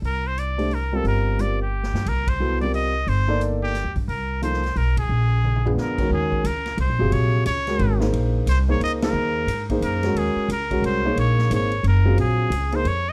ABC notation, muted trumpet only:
X:1
M:3/4
L:1/8
Q:"Swing" 1/4=178
K:Bb
V:1 name="Muted trumpet"
B c d2 B A | B2 d G3 | B c2 d e2 | c2 z G2 z |
B2 c2 B _A- | _A4 B2 | [K:Ebdor] A2 B2 c2 | d2 d3 z |
z2 c d e B- | B3 z B2 | A2 B2 c2 | d2 d2 B2 |
A3 c d e |]